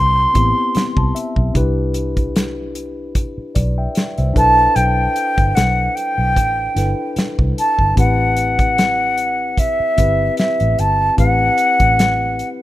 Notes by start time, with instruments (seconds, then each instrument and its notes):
Already playing: fingered electric bass C2, tine electric piano C4 E4 G4 B4, flute C6
0.34 fingered electric bass A1, tine electric piano B3 C4 E4 G4, kick, closed hi-hat
0.75 tine electric piano C6, muted fingered electric bass stroke, snare, closed hi-hat
0.97 fingered electric bass C2, tine electric piano A5, kick
1.15 tine electric piano E5, closed hi-hat
1.36 fingered electric bass B1, kick
1.54 fingered electric bass C2, tine electric piano D4 E4 G4 B4, kick, closed hi-hat
1.94 closed hi-hat
2.17 kick, closed hi-hat
2.36 snare, closed hi-hat
2.75 closed hi-hat
3.15 kick, closed hi-hat
3.38 muted fingered electric bass stroke
3.55 fingered electric bass B1, tine electric piano B4 D5, kick, closed hi-hat
3.78 tine electric piano E5 G5
3.95 snare, closed hi-hat
4.18 fingered electric bass C2, tine electric piano C5 E5, closed hi-hat
4.34 fingered electric bass B1, tine electric piano D4 E4 A4 B4, flute A5, kick, closed hi-hat
4.75 fingered electric bass B1, flute G5, closed hi-hat
5.16 closed hi-hat
5.37 fingered electric bass G1, kick, closed hi-hat
5.55 fingered electric bass B1, flute F#5, snare, closed hi-hat
5.95 flute G5, closed hi-hat
6.18 fingered electric bass B1
6.36 fingered electric bass A1, kick, closed hi-hat
6.75 fingered electric bass G1, tine electric piano D4 E4 A4 B4, snare, closed hi-hat
7.16 muted fingered electric bass stroke, snare, closed hi-hat
7.39 fingered electric bass C2, kick
7.58 flute A5, closed hi-hat
7.79 fingered electric bass G1, kick
7.96 fingered electric bass A1, tine electric piano C4 E4 G4 B4, flute F#5, kick, closed hi-hat
8.37 closed hi-hat
8.59 kick, closed hi-hat
8.78 snare, closed hi-hat
9.17 closed hi-hat
9.58 flute E5, kick, closed hi-hat
9.80 muted fingered electric bass stroke
9.97 fingered electric bass G1, tine electric piano C4 E4 G4 B4, kick, closed hi-hat
10.37 flute E5, snare, closed hi-hat
10.60 fingered electric bass A1, closed hi-hat
10.79 fingered electric bass G1, flute A5, closed hi-hat
11.17 fingered electric bass A1, tine electric piano C4 E4 G4 B4, flute F#5, kick, closed hi-hat
11.58 closed hi-hat
11.80 fingered electric bass A1, kick, closed hi-hat
11.99 snare, closed hi-hat
12.39 closed hi-hat